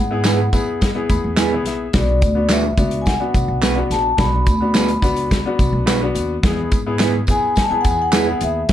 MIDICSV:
0, 0, Header, 1, 7, 480
1, 0, Start_track
1, 0, Tempo, 562324
1, 1655, Time_signature, 4, 2, 24, 8
1, 7449, End_track
2, 0, Start_track
2, 0, Title_t, "Vibraphone"
2, 0, Program_c, 0, 11
2, 0, Note_on_c, 0, 78, 80
2, 425, Note_off_c, 0, 78, 0
2, 1667, Note_on_c, 0, 74, 82
2, 2108, Note_off_c, 0, 74, 0
2, 2141, Note_on_c, 0, 76, 73
2, 2571, Note_off_c, 0, 76, 0
2, 2574, Note_on_c, 0, 80, 67
2, 2617, Note_on_c, 0, 78, 87
2, 2625, Note_off_c, 0, 80, 0
2, 3340, Note_on_c, 0, 81, 82
2, 3358, Note_off_c, 0, 78, 0
2, 3574, Note_on_c, 0, 83, 101
2, 3585, Note_off_c, 0, 81, 0
2, 4501, Note_off_c, 0, 83, 0
2, 6238, Note_on_c, 0, 80, 95
2, 6496, Note_off_c, 0, 80, 0
2, 6504, Note_on_c, 0, 81, 81
2, 6582, Note_off_c, 0, 81, 0
2, 6582, Note_on_c, 0, 80, 81
2, 6660, Note_off_c, 0, 80, 0
2, 6665, Note_on_c, 0, 78, 85
2, 6740, Note_off_c, 0, 78, 0
2, 6751, Note_on_c, 0, 80, 85
2, 6822, Note_off_c, 0, 80, 0
2, 6843, Note_on_c, 0, 78, 90
2, 7200, Note_off_c, 0, 78, 0
2, 7201, Note_on_c, 0, 76, 81
2, 7428, Note_off_c, 0, 76, 0
2, 7449, End_track
3, 0, Start_track
3, 0, Title_t, "Clean electric guitar"
3, 0, Program_c, 1, 27
3, 211, Note_on_c, 1, 59, 87
3, 213, Note_on_c, 1, 64, 77
3, 219, Note_on_c, 1, 68, 80
3, 223, Note_on_c, 1, 71, 83
3, 323, Note_off_c, 1, 59, 0
3, 324, Note_off_c, 1, 64, 0
3, 327, Note_off_c, 1, 68, 0
3, 329, Note_off_c, 1, 71, 0
3, 1172, Note_on_c, 1, 59, 78
3, 1175, Note_on_c, 1, 64, 81
3, 1178, Note_on_c, 1, 68, 82
3, 1181, Note_on_c, 1, 71, 93
3, 1284, Note_off_c, 1, 59, 0
3, 1285, Note_off_c, 1, 64, 0
3, 1287, Note_off_c, 1, 68, 0
3, 1289, Note_off_c, 1, 71, 0
3, 2130, Note_on_c, 1, 59, 78
3, 2136, Note_on_c, 1, 66, 87
3, 2137, Note_on_c, 1, 62, 88
3, 2141, Note_on_c, 1, 71, 90
3, 2243, Note_off_c, 1, 59, 0
3, 2246, Note_off_c, 1, 66, 0
3, 2247, Note_off_c, 1, 62, 0
3, 2249, Note_off_c, 1, 71, 0
3, 3088, Note_on_c, 1, 59, 77
3, 3095, Note_on_c, 1, 62, 88
3, 3097, Note_on_c, 1, 66, 83
3, 3100, Note_on_c, 1, 71, 88
3, 3202, Note_off_c, 1, 59, 0
3, 3206, Note_off_c, 1, 62, 0
3, 3207, Note_off_c, 1, 66, 0
3, 3208, Note_off_c, 1, 71, 0
3, 4047, Note_on_c, 1, 59, 89
3, 4051, Note_on_c, 1, 62, 87
3, 4055, Note_on_c, 1, 66, 96
3, 4059, Note_on_c, 1, 71, 96
3, 4162, Note_off_c, 1, 59, 0
3, 4164, Note_off_c, 1, 62, 0
3, 4166, Note_off_c, 1, 66, 0
3, 4168, Note_off_c, 1, 71, 0
3, 5003, Note_on_c, 1, 59, 84
3, 5006, Note_on_c, 1, 62, 88
3, 5009, Note_on_c, 1, 66, 90
3, 5015, Note_on_c, 1, 71, 91
3, 5120, Note_off_c, 1, 59, 0
3, 5122, Note_off_c, 1, 62, 0
3, 5123, Note_off_c, 1, 66, 0
3, 5126, Note_off_c, 1, 71, 0
3, 5965, Note_on_c, 1, 59, 79
3, 5969, Note_on_c, 1, 64, 88
3, 5973, Note_on_c, 1, 68, 84
3, 5978, Note_on_c, 1, 71, 93
3, 6081, Note_off_c, 1, 59, 0
3, 6083, Note_off_c, 1, 64, 0
3, 6085, Note_off_c, 1, 68, 0
3, 6088, Note_off_c, 1, 71, 0
3, 6930, Note_on_c, 1, 59, 72
3, 6936, Note_on_c, 1, 64, 77
3, 6937, Note_on_c, 1, 68, 81
3, 6940, Note_on_c, 1, 71, 86
3, 7043, Note_off_c, 1, 59, 0
3, 7047, Note_off_c, 1, 64, 0
3, 7047, Note_off_c, 1, 68, 0
3, 7049, Note_off_c, 1, 71, 0
3, 7449, End_track
4, 0, Start_track
4, 0, Title_t, "Grand piano"
4, 0, Program_c, 2, 0
4, 90, Note_on_c, 2, 59, 78
4, 96, Note_on_c, 2, 64, 76
4, 102, Note_on_c, 2, 68, 97
4, 372, Note_off_c, 2, 59, 0
4, 375, Note_off_c, 2, 64, 0
4, 378, Note_off_c, 2, 68, 0
4, 449, Note_on_c, 2, 59, 83
4, 456, Note_on_c, 2, 64, 75
4, 462, Note_on_c, 2, 68, 92
4, 732, Note_off_c, 2, 59, 0
4, 735, Note_off_c, 2, 64, 0
4, 738, Note_off_c, 2, 68, 0
4, 810, Note_on_c, 2, 59, 79
4, 817, Note_on_c, 2, 64, 70
4, 824, Note_on_c, 2, 68, 89
4, 937, Note_on_c, 2, 83, 69
4, 1159, Note_off_c, 2, 83, 0
4, 1182, Note_on_c, 2, 80, 64
4, 1185, Note_off_c, 2, 59, 0
4, 1189, Note_off_c, 2, 64, 0
4, 1192, Note_off_c, 2, 68, 0
4, 1302, Note_on_c, 2, 59, 82
4, 1306, Note_on_c, 2, 64, 67
4, 1315, Note_on_c, 2, 68, 89
4, 1402, Note_off_c, 2, 80, 0
4, 1425, Note_on_c, 2, 76, 66
4, 1578, Note_off_c, 2, 59, 0
4, 1580, Note_off_c, 2, 64, 0
4, 1585, Note_off_c, 2, 68, 0
4, 1644, Note_off_c, 2, 76, 0
4, 1650, Note_on_c, 2, 59, 69
4, 1652, Note_on_c, 2, 62, 62
4, 1664, Note_on_c, 2, 66, 72
4, 1932, Note_off_c, 2, 59, 0
4, 1933, Note_off_c, 2, 62, 0
4, 1939, Note_off_c, 2, 66, 0
4, 2006, Note_on_c, 2, 59, 70
4, 2017, Note_on_c, 2, 62, 64
4, 2022, Note_on_c, 2, 66, 73
4, 2290, Note_off_c, 2, 59, 0
4, 2296, Note_off_c, 2, 62, 0
4, 2298, Note_off_c, 2, 66, 0
4, 2371, Note_on_c, 2, 59, 71
4, 2376, Note_on_c, 2, 62, 63
4, 2382, Note_on_c, 2, 66, 74
4, 2653, Note_off_c, 2, 59, 0
4, 2655, Note_off_c, 2, 62, 0
4, 2658, Note_off_c, 2, 66, 0
4, 2732, Note_on_c, 2, 62, 61
4, 2733, Note_on_c, 2, 59, 68
4, 2743, Note_on_c, 2, 66, 74
4, 3107, Note_off_c, 2, 59, 0
4, 3107, Note_off_c, 2, 62, 0
4, 3112, Note_off_c, 2, 66, 0
4, 3210, Note_on_c, 2, 59, 70
4, 3212, Note_on_c, 2, 62, 62
4, 3224, Note_on_c, 2, 66, 80
4, 3492, Note_off_c, 2, 59, 0
4, 3494, Note_off_c, 2, 62, 0
4, 3500, Note_off_c, 2, 66, 0
4, 3560, Note_on_c, 2, 59, 66
4, 3571, Note_on_c, 2, 62, 61
4, 3577, Note_on_c, 2, 66, 75
4, 3848, Note_off_c, 2, 59, 0
4, 3853, Note_off_c, 2, 62, 0
4, 3856, Note_off_c, 2, 66, 0
4, 3932, Note_on_c, 2, 59, 71
4, 3940, Note_on_c, 2, 62, 67
4, 3945, Note_on_c, 2, 66, 78
4, 4214, Note_off_c, 2, 59, 0
4, 4218, Note_off_c, 2, 62, 0
4, 4220, Note_off_c, 2, 66, 0
4, 4286, Note_on_c, 2, 59, 87
4, 4292, Note_on_c, 2, 62, 78
4, 4304, Note_on_c, 2, 66, 89
4, 4570, Note_off_c, 2, 59, 0
4, 4574, Note_off_c, 2, 62, 0
4, 4579, Note_off_c, 2, 66, 0
4, 4656, Note_on_c, 2, 59, 79
4, 4661, Note_on_c, 2, 62, 79
4, 4672, Note_on_c, 2, 66, 93
4, 5029, Note_off_c, 2, 59, 0
4, 5032, Note_off_c, 2, 62, 0
4, 5037, Note_off_c, 2, 66, 0
4, 5139, Note_on_c, 2, 59, 85
4, 5145, Note_on_c, 2, 62, 77
4, 5149, Note_on_c, 2, 66, 98
4, 5417, Note_off_c, 2, 59, 0
4, 5420, Note_off_c, 2, 62, 0
4, 5422, Note_off_c, 2, 66, 0
4, 5488, Note_on_c, 2, 59, 82
4, 5500, Note_on_c, 2, 64, 76
4, 5509, Note_on_c, 2, 68, 93
4, 5772, Note_off_c, 2, 59, 0
4, 5778, Note_off_c, 2, 64, 0
4, 5782, Note_off_c, 2, 68, 0
4, 5859, Note_on_c, 2, 59, 85
4, 5862, Note_on_c, 2, 64, 80
4, 5867, Note_on_c, 2, 68, 91
4, 6137, Note_off_c, 2, 59, 0
4, 6139, Note_off_c, 2, 64, 0
4, 6141, Note_off_c, 2, 68, 0
4, 6219, Note_on_c, 2, 59, 70
4, 6223, Note_on_c, 2, 64, 66
4, 6228, Note_on_c, 2, 68, 78
4, 6497, Note_off_c, 2, 59, 0
4, 6499, Note_off_c, 2, 64, 0
4, 6502, Note_off_c, 2, 68, 0
4, 6576, Note_on_c, 2, 59, 71
4, 6587, Note_on_c, 2, 64, 65
4, 6591, Note_on_c, 2, 68, 78
4, 6949, Note_off_c, 2, 59, 0
4, 6955, Note_off_c, 2, 64, 0
4, 6956, Note_off_c, 2, 68, 0
4, 7057, Note_on_c, 2, 59, 72
4, 7062, Note_on_c, 2, 64, 66
4, 7073, Note_on_c, 2, 68, 79
4, 7336, Note_off_c, 2, 59, 0
4, 7339, Note_off_c, 2, 64, 0
4, 7344, Note_off_c, 2, 68, 0
4, 7419, Note_on_c, 2, 59, 68
4, 7449, Note_off_c, 2, 59, 0
4, 7449, End_track
5, 0, Start_track
5, 0, Title_t, "Upright bass"
5, 0, Program_c, 3, 32
5, 0, Note_on_c, 3, 44, 85
5, 385, Note_off_c, 3, 44, 0
5, 450, Note_on_c, 3, 42, 75
5, 761, Note_off_c, 3, 42, 0
5, 936, Note_on_c, 3, 40, 80
5, 1039, Note_off_c, 3, 40, 0
5, 1059, Note_on_c, 3, 40, 74
5, 1415, Note_off_c, 3, 40, 0
5, 1415, Note_on_c, 3, 34, 79
5, 1621, Note_off_c, 3, 34, 0
5, 1656, Note_on_c, 3, 35, 93
5, 1898, Note_off_c, 3, 35, 0
5, 1898, Note_on_c, 3, 38, 77
5, 2309, Note_off_c, 3, 38, 0
5, 2369, Note_on_c, 3, 37, 85
5, 2681, Note_off_c, 3, 37, 0
5, 2855, Note_on_c, 3, 35, 86
5, 2958, Note_off_c, 3, 35, 0
5, 2972, Note_on_c, 3, 35, 78
5, 3283, Note_off_c, 3, 35, 0
5, 3331, Note_on_c, 3, 34, 73
5, 3539, Note_off_c, 3, 34, 0
5, 3570, Note_on_c, 3, 35, 92
5, 3779, Note_off_c, 3, 35, 0
5, 3815, Note_on_c, 3, 38, 87
5, 4228, Note_off_c, 3, 38, 0
5, 4289, Note_on_c, 3, 37, 81
5, 4601, Note_off_c, 3, 37, 0
5, 4773, Note_on_c, 3, 35, 83
5, 4877, Note_off_c, 3, 35, 0
5, 4887, Note_on_c, 3, 35, 83
5, 5200, Note_off_c, 3, 35, 0
5, 5247, Note_on_c, 3, 39, 82
5, 5457, Note_off_c, 3, 39, 0
5, 5494, Note_on_c, 3, 40, 102
5, 5701, Note_off_c, 3, 40, 0
5, 5733, Note_on_c, 3, 44, 77
5, 6146, Note_off_c, 3, 44, 0
5, 6213, Note_on_c, 3, 42, 84
5, 6420, Note_off_c, 3, 42, 0
5, 6697, Note_on_c, 3, 40, 97
5, 7109, Note_off_c, 3, 40, 0
5, 7182, Note_on_c, 3, 39, 85
5, 7386, Note_off_c, 3, 39, 0
5, 7420, Note_on_c, 3, 40, 97
5, 7449, Note_off_c, 3, 40, 0
5, 7449, End_track
6, 0, Start_track
6, 0, Title_t, "Muted upright bass strokes"
6, 6579, Note_on_c, 9, 29, 44
6, 6664, Note_off_c, 9, 29, 0
6, 7449, End_track
7, 0, Start_track
7, 0, Title_t, "Drums"
7, 208, Note_on_c, 9, 39, 84
7, 208, Note_on_c, 9, 54, 81
7, 212, Note_on_c, 9, 42, 76
7, 214, Note_on_c, 9, 38, 106
7, 293, Note_off_c, 9, 39, 0
7, 293, Note_off_c, 9, 54, 0
7, 297, Note_off_c, 9, 42, 0
7, 300, Note_off_c, 9, 38, 0
7, 451, Note_on_c, 9, 54, 56
7, 452, Note_on_c, 9, 36, 81
7, 457, Note_on_c, 9, 42, 62
7, 536, Note_off_c, 9, 54, 0
7, 537, Note_off_c, 9, 36, 0
7, 543, Note_off_c, 9, 42, 0
7, 694, Note_on_c, 9, 54, 42
7, 699, Note_on_c, 9, 42, 80
7, 701, Note_on_c, 9, 36, 80
7, 704, Note_on_c, 9, 38, 95
7, 779, Note_off_c, 9, 54, 0
7, 784, Note_off_c, 9, 42, 0
7, 786, Note_off_c, 9, 36, 0
7, 790, Note_off_c, 9, 38, 0
7, 935, Note_on_c, 9, 42, 62
7, 936, Note_on_c, 9, 36, 76
7, 938, Note_on_c, 9, 54, 50
7, 1020, Note_off_c, 9, 42, 0
7, 1021, Note_off_c, 9, 36, 0
7, 1023, Note_off_c, 9, 54, 0
7, 1170, Note_on_c, 9, 39, 95
7, 1170, Note_on_c, 9, 54, 87
7, 1171, Note_on_c, 9, 38, 99
7, 1172, Note_on_c, 9, 42, 84
7, 1256, Note_off_c, 9, 38, 0
7, 1256, Note_off_c, 9, 39, 0
7, 1256, Note_off_c, 9, 54, 0
7, 1257, Note_off_c, 9, 42, 0
7, 1414, Note_on_c, 9, 42, 58
7, 1423, Note_on_c, 9, 38, 31
7, 1499, Note_off_c, 9, 42, 0
7, 1508, Note_off_c, 9, 38, 0
7, 1651, Note_on_c, 9, 42, 75
7, 1653, Note_on_c, 9, 54, 31
7, 1655, Note_on_c, 9, 36, 105
7, 1655, Note_on_c, 9, 38, 102
7, 1736, Note_off_c, 9, 42, 0
7, 1738, Note_off_c, 9, 54, 0
7, 1741, Note_off_c, 9, 36, 0
7, 1741, Note_off_c, 9, 38, 0
7, 1892, Note_on_c, 9, 54, 45
7, 1896, Note_on_c, 9, 42, 67
7, 1897, Note_on_c, 9, 36, 88
7, 1977, Note_off_c, 9, 54, 0
7, 1981, Note_off_c, 9, 42, 0
7, 1982, Note_off_c, 9, 36, 0
7, 2128, Note_on_c, 9, 39, 87
7, 2128, Note_on_c, 9, 42, 74
7, 2128, Note_on_c, 9, 54, 82
7, 2130, Note_on_c, 9, 38, 100
7, 2213, Note_off_c, 9, 39, 0
7, 2213, Note_off_c, 9, 42, 0
7, 2213, Note_off_c, 9, 54, 0
7, 2216, Note_off_c, 9, 38, 0
7, 2369, Note_on_c, 9, 36, 83
7, 2370, Note_on_c, 9, 42, 60
7, 2370, Note_on_c, 9, 54, 54
7, 2454, Note_off_c, 9, 36, 0
7, 2455, Note_off_c, 9, 42, 0
7, 2455, Note_off_c, 9, 54, 0
7, 2485, Note_on_c, 9, 42, 40
7, 2570, Note_off_c, 9, 42, 0
7, 2609, Note_on_c, 9, 54, 44
7, 2618, Note_on_c, 9, 42, 78
7, 2619, Note_on_c, 9, 36, 75
7, 2624, Note_on_c, 9, 38, 88
7, 2694, Note_off_c, 9, 54, 0
7, 2704, Note_off_c, 9, 42, 0
7, 2705, Note_off_c, 9, 36, 0
7, 2710, Note_off_c, 9, 38, 0
7, 2854, Note_on_c, 9, 54, 49
7, 2855, Note_on_c, 9, 36, 80
7, 2856, Note_on_c, 9, 42, 67
7, 2939, Note_off_c, 9, 54, 0
7, 2940, Note_off_c, 9, 36, 0
7, 2942, Note_off_c, 9, 42, 0
7, 3091, Note_on_c, 9, 39, 87
7, 3091, Note_on_c, 9, 54, 87
7, 3101, Note_on_c, 9, 38, 92
7, 3101, Note_on_c, 9, 42, 91
7, 3176, Note_off_c, 9, 39, 0
7, 3176, Note_off_c, 9, 54, 0
7, 3186, Note_off_c, 9, 38, 0
7, 3187, Note_off_c, 9, 42, 0
7, 3335, Note_on_c, 9, 54, 27
7, 3337, Note_on_c, 9, 42, 58
7, 3346, Note_on_c, 9, 38, 31
7, 3420, Note_off_c, 9, 54, 0
7, 3422, Note_off_c, 9, 42, 0
7, 3431, Note_off_c, 9, 38, 0
7, 3569, Note_on_c, 9, 42, 73
7, 3572, Note_on_c, 9, 36, 110
7, 3574, Note_on_c, 9, 38, 113
7, 3574, Note_on_c, 9, 54, 33
7, 3655, Note_off_c, 9, 42, 0
7, 3657, Note_off_c, 9, 36, 0
7, 3659, Note_off_c, 9, 38, 0
7, 3659, Note_off_c, 9, 54, 0
7, 3810, Note_on_c, 9, 54, 48
7, 3813, Note_on_c, 9, 36, 93
7, 3813, Note_on_c, 9, 42, 68
7, 3896, Note_off_c, 9, 54, 0
7, 3898, Note_off_c, 9, 42, 0
7, 3899, Note_off_c, 9, 36, 0
7, 4050, Note_on_c, 9, 39, 90
7, 4050, Note_on_c, 9, 54, 93
7, 4052, Note_on_c, 9, 42, 72
7, 4054, Note_on_c, 9, 38, 101
7, 4136, Note_off_c, 9, 39, 0
7, 4136, Note_off_c, 9, 54, 0
7, 4137, Note_off_c, 9, 42, 0
7, 4140, Note_off_c, 9, 38, 0
7, 4170, Note_on_c, 9, 42, 50
7, 4255, Note_off_c, 9, 42, 0
7, 4289, Note_on_c, 9, 36, 80
7, 4298, Note_on_c, 9, 54, 55
7, 4299, Note_on_c, 9, 42, 64
7, 4374, Note_off_c, 9, 36, 0
7, 4383, Note_off_c, 9, 54, 0
7, 4385, Note_off_c, 9, 42, 0
7, 4409, Note_on_c, 9, 42, 42
7, 4494, Note_off_c, 9, 42, 0
7, 4532, Note_on_c, 9, 54, 41
7, 4536, Note_on_c, 9, 36, 74
7, 4536, Note_on_c, 9, 42, 76
7, 4542, Note_on_c, 9, 38, 93
7, 4617, Note_off_c, 9, 54, 0
7, 4621, Note_off_c, 9, 36, 0
7, 4621, Note_off_c, 9, 42, 0
7, 4627, Note_off_c, 9, 38, 0
7, 4773, Note_on_c, 9, 36, 81
7, 4776, Note_on_c, 9, 54, 46
7, 4778, Note_on_c, 9, 42, 68
7, 4858, Note_off_c, 9, 36, 0
7, 4862, Note_off_c, 9, 54, 0
7, 4864, Note_off_c, 9, 42, 0
7, 5015, Note_on_c, 9, 38, 95
7, 5015, Note_on_c, 9, 39, 89
7, 5015, Note_on_c, 9, 42, 84
7, 5015, Note_on_c, 9, 54, 91
7, 5100, Note_off_c, 9, 38, 0
7, 5100, Note_off_c, 9, 39, 0
7, 5100, Note_off_c, 9, 54, 0
7, 5101, Note_off_c, 9, 42, 0
7, 5251, Note_on_c, 9, 54, 27
7, 5254, Note_on_c, 9, 42, 60
7, 5337, Note_off_c, 9, 54, 0
7, 5339, Note_off_c, 9, 42, 0
7, 5492, Note_on_c, 9, 36, 114
7, 5493, Note_on_c, 9, 42, 82
7, 5495, Note_on_c, 9, 54, 33
7, 5498, Note_on_c, 9, 38, 104
7, 5578, Note_off_c, 9, 36, 0
7, 5579, Note_off_c, 9, 42, 0
7, 5580, Note_off_c, 9, 54, 0
7, 5583, Note_off_c, 9, 38, 0
7, 5733, Note_on_c, 9, 42, 69
7, 5733, Note_on_c, 9, 54, 50
7, 5735, Note_on_c, 9, 36, 94
7, 5818, Note_off_c, 9, 54, 0
7, 5819, Note_off_c, 9, 42, 0
7, 5820, Note_off_c, 9, 36, 0
7, 5966, Note_on_c, 9, 39, 88
7, 5966, Note_on_c, 9, 54, 88
7, 5975, Note_on_c, 9, 42, 81
7, 5977, Note_on_c, 9, 38, 106
7, 6052, Note_off_c, 9, 39, 0
7, 6052, Note_off_c, 9, 54, 0
7, 6061, Note_off_c, 9, 42, 0
7, 6063, Note_off_c, 9, 38, 0
7, 6206, Note_on_c, 9, 54, 57
7, 6215, Note_on_c, 9, 36, 86
7, 6221, Note_on_c, 9, 42, 64
7, 6291, Note_off_c, 9, 54, 0
7, 6300, Note_off_c, 9, 36, 0
7, 6307, Note_off_c, 9, 42, 0
7, 6450, Note_on_c, 9, 54, 41
7, 6461, Note_on_c, 9, 42, 77
7, 6463, Note_on_c, 9, 36, 70
7, 6466, Note_on_c, 9, 38, 96
7, 6535, Note_off_c, 9, 54, 0
7, 6546, Note_off_c, 9, 42, 0
7, 6548, Note_off_c, 9, 36, 0
7, 6552, Note_off_c, 9, 38, 0
7, 6696, Note_on_c, 9, 42, 69
7, 6696, Note_on_c, 9, 54, 48
7, 6699, Note_on_c, 9, 36, 79
7, 6781, Note_off_c, 9, 54, 0
7, 6782, Note_off_c, 9, 42, 0
7, 6785, Note_off_c, 9, 36, 0
7, 6933, Note_on_c, 9, 39, 93
7, 6933, Note_on_c, 9, 54, 95
7, 6940, Note_on_c, 9, 38, 102
7, 6940, Note_on_c, 9, 42, 92
7, 7019, Note_off_c, 9, 39, 0
7, 7019, Note_off_c, 9, 54, 0
7, 7025, Note_off_c, 9, 38, 0
7, 7025, Note_off_c, 9, 42, 0
7, 7175, Note_on_c, 9, 54, 28
7, 7176, Note_on_c, 9, 42, 61
7, 7260, Note_off_c, 9, 54, 0
7, 7262, Note_off_c, 9, 42, 0
7, 7415, Note_on_c, 9, 54, 32
7, 7416, Note_on_c, 9, 42, 78
7, 7421, Note_on_c, 9, 36, 108
7, 7421, Note_on_c, 9, 38, 104
7, 7449, Note_off_c, 9, 36, 0
7, 7449, Note_off_c, 9, 38, 0
7, 7449, Note_off_c, 9, 42, 0
7, 7449, Note_off_c, 9, 54, 0
7, 7449, End_track
0, 0, End_of_file